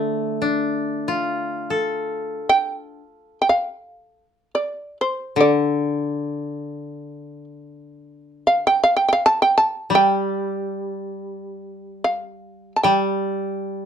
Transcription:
Already playing: koto D3 A3, shamisen D5
0.42 koto D4
1.08 koto F4
1.70 koto A4
2.49 shamisen G5
3.42 shamisen G5
3.49 shamisen F5
4.55 shamisen D5
5.01 shamisen C5
5.36 koto D3
5.41 shamisen D5
8.47 shamisen F5
8.67 shamisen G5
8.84 shamisen F5
8.97 shamisen G5
9.09 shamisen G5
9.13 shamisen F5
9.26 shamisen A5
9.42 shamisen G5
9.58 shamisen A5
9.90 koto G3
9.95 shamisen G5
12.04 shamisen F5
12.76 shamisen A5
12.83 koto G3, shamisen G5

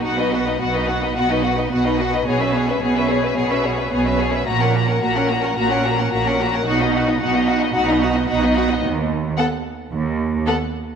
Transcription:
0.05 double bass section B1, cello section B2, viola section B3, violin section F#4 F#5
0.18 viola section D#4, violin section B4 D#5
0.32 viola section B3, violin section F#4 F#5
0.46 viola section D#4, violin section B4 D#5
0.60 double bass section B1, cello section B2, viola section B3, violin section F#4 F#5
0.73 viola section D#4, violin section B4 D#5
0.88 viola section B3, violin section F#4 F#5
1.01 viola section D#4, violin section B4 D#5
1.15 double bass section B1, cello section B2, viola section B3, violin section F#4 F#5
1.29 viola section D#4, violin section B4 D#5
1.43 viola section B3, violin section F#4 F#5
1.57 viola section D#4, violin section B4 D#5
1.71 double bass section B1, cello section B2, viola section B3, violin section F#4 F#5
1.85 viola section D#4, violin section B4 D#5
1.99 viola section B3, violin section F#4 F#5
2.13 viola section D#4, violin section B4 D#5
2.26 double bass section B1, cello section B2, viola section B3, violin section G#4 C#5
2.40 viola section C#4, violin section B4 E5
2.54 viola section B3, violin section G#4 C#5
2.68 viola section C#4, violin section B4 E5
2.81 double bass section B1, cello section B2, viola section B3, violin section G#4 C#5
2.95 viola section C#4, violin section B4 E5
3.09 viola section B3, violin section G#4 C#5
3.23 viola section C#4, violin section B4 E5
3.36 double bass section B1, cello section B2, viola section B3, violin section G#4 C#5
3.50 viola section C#4, violin section B4 E5
3.63 viola section B3, violin section G#4 C#5
3.77 viola section C#4, violin section B4 E5
3.91 double bass section B1, cello section B2, viola section B3, violin section G#4 C#5
4.05 viola section C#4, violin section B4 E5
4.18 viola section B3, violin section G#4 C#5
4.32 viola section C#4, violin section B4 E5
4.46 double bass section A#1, cello section A#2, viola section A#3, violin section F#4 A#5
4.60 viola section C#4, violin section A#4 F#5
4.74 viola section A#3, violin section F#4 A#5
4.87 viola section C#4, violin section A#4 F#5
5.01 double bass section A#1, cello section A#2, viola section A#3, violin section F#4 A#5
5.15 viola section C#4, violin section A#4 F#5
5.29 viola section A#3, violin section F#4 A#5
5.43 viola section C#4, violin section A#4 F#5
5.56 double bass section A#1, cello section A#2, viola section A#3, violin section F#4 A#5
5.71 viola section C#4, violin section A#4 F#5
5.84 viola section A#3, violin section F#4 A#5
5.97 viola section C#4, violin section A#4 F#5
6.11 double bass section A#1, cello section A#2, viola section A#3, violin section F#4 A#5
6.26 viola section C#4, violin section A#4 F#5
6.39 viola section A#3, violin section F#4 A#5
6.52 viola section C#4, violin section A#4 F#5
6.66 double bass section B1, cello section B2, viola section D#4, violin section F#4 F#5
6.80 viola section B3, violin section D#4 D#5
6.93 viola section D#4, violin section F#4 F#5
7.07 viola section B3, violin section D#4 D#5
7.20 double bass section B1, cello section B2, viola section D#4, violin section F#4 F#5
7.34 viola section B3, violin section D#4 D#5
7.47 viola section D#4, violin section F#4 F#5
7.60 viola section B3, violin section D#4 D#5
7.74 double bass section B1, cello section B2, viola section D#4, violin section F#4 F#5
7.87 viola section B3, violin section D#4 D#5
8.01 viola section D#4, violin section F#4 F#5
8.15 viola section B3, violin section D#4 D#5
8.28 double bass section B1, cello section B2, viola section D#4, violin section F#4 F#5
8.42 viola section B3, violin section D#4 D#5
8.55 viola section D#4, violin section F#4 F#5
8.69 viola section B3, violin section D#4 D#5
8.83 cello section D#2, double bass section D#2
9.37 viola section B3, violin section A4 F#5
9.92 cello section D#2, double bass section D#2
10.47 viola section B3, violin section A4 F#5

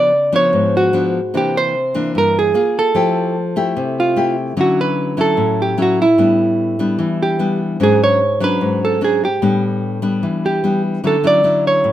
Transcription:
Already playing: nylon-string guitar C#3 F3 B3 D4, hollow-body jazz guitar D5
0.32 nylon-string guitar F3 B3 D4, hollow-body jazz guitar C#5
0.53 nylon-string guitar G#2
0.77 hollow-body jazz guitar F#4
0.93 nylon-string guitar F3 B3 D4
1.34 nylon-string guitar C3 E3 A#3 D4, hollow-body jazz guitar G4
1.57 hollow-body jazz guitar C5
1.94 nylon-string guitar E3 A#3 D4
2.15 nylon-string guitar G2, hollow-body jazz guitar A#4
2.39 hollow-body jazz guitar G#4
2.54 nylon-string guitar A#3 F4 G#4
2.79 hollow-body jazz guitar A4
2.95 nylon-string guitar F3 A3 E4 G4
3.56 nylon-string guitar A3 E4 G4
3.77 nylon-string guitar C3
4.00 hollow-body jazz guitar F4
4.16 nylon-string guitar A3 E4 G4
4.57 nylon-string guitar D3 F#3 C#4 E4
4.61 hollow-body jazz guitar F#4
4.81 hollow-body jazz guitar B4
5.17 nylon-string guitar F#3 C#4 E4, hollow-body jazz guitar A4
5.37 nylon-string guitar A2
5.62 hollow-body jazz guitar G4
5.78 nylon-string guitar F#3 C#4 E4
5.82 hollow-body jazz guitar F#4
6.02 hollow-body jazz guitar E4
6.18 nylon-string guitar A2 G3 B3 D4
6.79 nylon-string guitar G3 B3 D4
6.99 nylon-string guitar E3
7.23 hollow-body jazz guitar G4
7.39 nylon-string guitar G3 B3 D4
7.80 nylon-string guitar G#2 F#3 C#4 D4, hollow-body jazz guitar G#4
8.04 hollow-body jazz guitar C#5
8.40 nylon-string guitar F#3 C#4 D4, hollow-body jazz guitar B4
8.61 nylon-string guitar G#2
8.85 hollow-body jazz guitar A4
9.01 nylon-string guitar F#3 C#4 D4, hollow-body jazz guitar G#4
9.25 hollow-body jazz guitar G4
9.42 nylon-string guitar A2 G3 B3 D4
10.02 nylon-string guitar G3 B3 D4
10.23 nylon-string guitar E3
10.46 hollow-body jazz guitar G4
10.64 nylon-string guitar G3 B3 D4
11.04 nylon-string guitar D3 F#3 C#4 E4, hollow-body jazz guitar A4
11.24 nylon-string guitar F#3 C#4 E4, hollow-body jazz guitar D5
11.44 nylon-string guitar F#3 C#4 E4
11.67 hollow-body jazz guitar C#5
11.84 nylon-string guitar A2

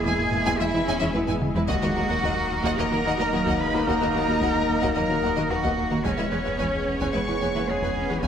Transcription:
Already playing: sub bass E1, analog synth pad B2 G#3 G#4 E5, french horn section G#3 E4, cello section A#3
0.04 double bass section E2, analog synth bass E2, viola section G#3 E4, cello G#4, violin section G#5, taiko
0.18 analog synth bass E2, taiko low-mid
0.32 analog synth bass E2, taiko low-mid
0.45 double bass section E2, analog synth bass E2, viola section G#3 E4, violin section G#5, taiko
0.59 double bass section E2, analog synth bass E2, cello section G#3, viola section G#3 E4, cello E4, violin section E5
0.74 double bass section E2, analog synth bass E3, viola section G#3 E4, violin section B4
0.87 double bass section E2, analog synth bass E2, viola section G#3 E4, cello section C#4, violin section G#5
1.00 double bass section E2, analog synth bass E3, viola section G#3 E4, violin section E5
1.14 analog synth bass E2, double bass section E2, viola section G#3 E4, cello section B3, violin section B4, taiko high
1.26 analog synth bass E2, double bass section E2, viola section G#3 E4, violin section G#5, taiko low-mid
1.42 analog synth bass E2, cello section G#3, taiko mid
1.54 double bass section E2, analog synth bass E3, viola section G#3 E4, violin section B4, taiko low
1.68 sub bass D#1, analog synth bass D#2, double bass section D#2, analog synth pad F#3 A#3 A#4 D#5, viola section A#3 F#4, french horn section A#3 D#4, cello F#4, violin section D#5 F#5, taiko
1.82 double bass section D#2, analog synth bass D#3, viola section A#3 F#4, violin section A#4 D#5
1.96 analog synth bass D#2, double bass section D#2, viola section A#3 F#4, violin section F#4 A#4
2.09 analog synth bass D#2, double bass section D#2, viola section A#3 F#4, violin section A#4 D#5
2.22 analog synth bass D#2, double bass section D#2, viola section A#3 F#4, cello section A#3, violin section D#5 F#5, taiko
2.37 analog synth bass D#2
2.51 analog synth bass D#2
2.63 double bass section D#2, analog synth bass D#2, viola section A#3 F#4, violin section D#5 F#5, taiko
2.77 double bass section D#2, analog synth bass D#2, viola section A#3 F#4, violin section A#4 D#5 A#5, cello A#4
2.91 double bass section D#2, analog synth bass D#3, viola section A#3 F#4, violin section F#4 A#4
3.04 double bass section D#2, analog synth bass D#2, viola section A#3 F#4, violin section D#5 F#5
3.18 double bass section D#2, analog synth bass D#3, viola section A#3 F#4, violin section A#4 D#5
3.32 analog synth bass D#2, double bass section D#2, cello section F#3, viola section A#3 F#4, violin section F#4 A#4
3.45 analog synth bass D#2, double bass section D#2, viola section A#3 F#4, violin section D#5 F#5, taiko
3.60 analog synth bass D#2, cello section G#3, cello B4, violin section B5
3.73 double bass section D#2, analog synth bass D#3, viola section A#3 F#4, violin section F#4 A#4
3.86 analog synth bass D#2, double bass section D#2, viola section A#3 F#4, cello section A#3, cello A#4, violin section D#5 F#5 A#5, taiko
4.01 double bass section D#2, analog synth bass D#3, viola section A#3 F#4, violin section A#4 D#5
4.14 analog synth bass D#2, double bass section D#2, viola section A#3 F#4, violin section F#4 A#4
4.28 analog synth bass D#2, double bass section D#2, viola section A#3 F#4, violin section A#4 D#5
4.41 analog synth bass D#2, double bass section D#2, cello section G#3, viola section A#3 F#4, violin section D#5 F#5, taiko
4.55 analog synth bass D#2
4.69 analog synth bass D#2, cello section A#3
4.81 double bass section D#2, analog synth bass D#2, viola section A#3 F#4, violin section D#5 F#5, taiko
4.95 analog synth bass D#2, double bass section D#2, cello section F#3, viola section A#3 F#4, violin section A#4 D#5 A#5, cello A#4
5.09 double bass section D#2, analog synth bass D#3, viola section A#3 F#4, violin section F#4 A#4
5.22 analog synth bass D#2, double bass section D#2, viola section A#3 F#4, cello section A#3, violin section D#5 F#5
5.36 double bass section D#2, analog synth bass D#3, viola section A#3 F#4, violin section A#4 D#5
5.50 analog synth bass D#2, double bass section D#2, viola section A#3 F#4, cello section B3, violin section F#4 A#4 F#5, cello F#4
5.63 analog synth bass D#2, double bass section D#2, viola section A#3 F#4, violin section D#5 F#5, taiko
5.77 analog synth bass D#2, cello section A#3
5.90 double bass section D#2, analog synth bass D#3, viola section A#3 F#4, violin section F#4 A#4
6.04 sub bass E1, analog synth bass E2, double bass section E2, viola section G#3 B4, analog synth pad G#3 B3 G#4 C#5, cello section G#3, french horn section B3 C#4, cello C#4, violin section C#5 G#5, taiko
6.18 double bass section E2, analog synth bass E3, viola section G#3 B4, violin section B4 E5
6.31 analog synth bass E2, double bass section E2, viola section G#3 B4, cello section B3, violin section G#4 C#5
6.44 double bass section E2, analog synth bass E2, viola section G#3 B4, violin section B4 E5
6.58 double bass section E2, analog synth bass E2, viola section G#3 B4, cello section C#4, violin section C#5 G#5, taiko
6.74 analog synth bass E2
6.87 analog synth bass E2
7.00 double bass section E2, analog synth bass E2, viola section G#3 B4, violin section C#5 G#5, taiko
7.13 double bass section E2, analog synth bass E2, cello section G#3, viola section G#3 B4, violin section B4 E5 C#6, cello C#5
7.26 double bass section E2, analog synth bass E3, viola section G#3 B4, violin section G#4 C#5
7.40 double bass section E2, analog synth bass E2, viola section G#3 B4, cello section A#3, violin section C#5 G#5
7.55 double bass section E2, analog synth bass E3, viola section G#3 B4, violin section B4 E5
7.68 analog synth bass E2, double bass section E2, cello section G#3, viola section G#3 B4, violin section G#4 C#5 G#5, cello G#4
7.82 analog synth bass E2, double bass section E2, viola section G#3 B4, violin section C#5 G#5, taiko
7.96 analog synth bass E2, cello section C#4
8.09 double bass section E2, analog synth bass E3, viola section G#3 B4, violin section G#4 C#5
8.22 analog synth bass E2, viola section G#3 B4, cello section B3, cello E4, violin section C#5 E5 G#5, taiko

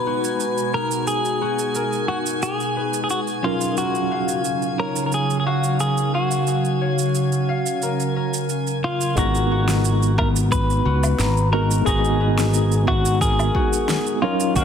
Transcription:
Already playing: ambient pad B2 G#3 D#4 F#4, tine electric piano G#3 B3 D#4 F#4, clean electric guitar B4, synth texture G#5 G#6, harp A#5
0.07 harp F#4
0.24 shaker
0.40 shaker
0.58 shaker
0.74 harp B3, clean electric guitar A#4
0.91 shaker
1.07 ambient pad G#4, clean electric guitar G#4, shaker
1.25 shaker
1.41 harp F#4
1.59 shaker
1.75 harp A#4, shaker
1.93 shaker
2.08 clean electric guitar F#4, harp F#4
2.26 shaker
2.42 clean electric guitar G#4, shaker
2.60 shaker
2.76 harp B4
2.94 shaker
3.04 clean electric guitar G#4
3.10 clean electric guitar F#4, shaker
3.27 shaker
3.42 ambient pad C#3 F#3 F5, tine electric piano F#3 C#4 D#4 A#4 F5, harp F4, clean electric guitar F4
3.61 shaker
3.77 clean electric guitar F#4, harp A#4, shaker
3.95 shaker
4.11 harp F5
4.28 shaker
4.45 shaker
4.62 shaker
4.79 clean electric guitar A#4, harp C#5
4.96 shaker
5.06 clean electric guitar A#4
5.12 clean electric guitar G#4, shaker
5.30 shaker
5.40 clean electric guitar G#4
5.46 clean electric guitar F#4, harp F5
5.64 shaker
5.80 clean electric guitar G#4, harp A#4, shaker
5.98 shaker
6.13 ambient pad C#4, clean electric guitar F#4, harp F5
6.31 shaker
6.47 shaker
6.65 shaker
6.81 harp C#5
6.99 shaker
7.15 shaker
7.32 shaker
7.49 harp F5
7.66 shaker
7.82 harp A#4, shaker
8.00 shaker
8.16 harp A#4
8.34 shaker
8.49 shaker
8.67 shaker
8.84 harp F4, clean electric guitar F4
9.01 shaker
9.15 fingered electric bass G#1, tine electric piano G#3 B3 D#4 F#4 A#5, clean electric guitar F#4, harp A#4, kick, shaker
9.35 shaker
9.51 harp F#4
9.68 snare, shaker
9.85 shaker
10.03 shaker
10.18 harp B3, clean electric guitar A#4, kick, low woodblock
10.36 shaker
10.52 clean electric guitar B4, kick, shaker
10.70 shaker
10.85 fingered electric bass C#2, harp F#4
11.03 low woodblock, shaker
11.19 fingered electric bass G#1, harp A#5, snare, shaker
11.37 shaker
11.52 tine electric piano G#3 B3 D#4 F#4 A#4, harp F#4, clean electric guitar A#4
11.71 shaker
11.85 fingered electric bass G#1, tine electric piano G#3 B3 D#4 F#4 A#5, clean electric guitar G#4, kick, shaker
12.05 shaker
12.21 harp B4
12.38 snare, shaker
12.54 shaker
12.72 shaker
12.87 clean electric guitar F#4, harp F#4, kick, low woodblock
13.05 shaker
13.21 clean electric guitar G#4, harp A#4, kick, shaker
13.39 low woodblock, shaker
13.55 harp F#4, kick
13.73 shaker
13.89 snare, shaker
14.07 shaker
14.22 tine electric piano F#3 C#4 D#4 F4 A#4, clean electric guitar F4, harp C#5
14.40 shaker
14.54 fingered electric bass D#2, tine electric piano F#3 C#4 D#4 A#4 F5, clean electric guitar F#4, kick, shaker

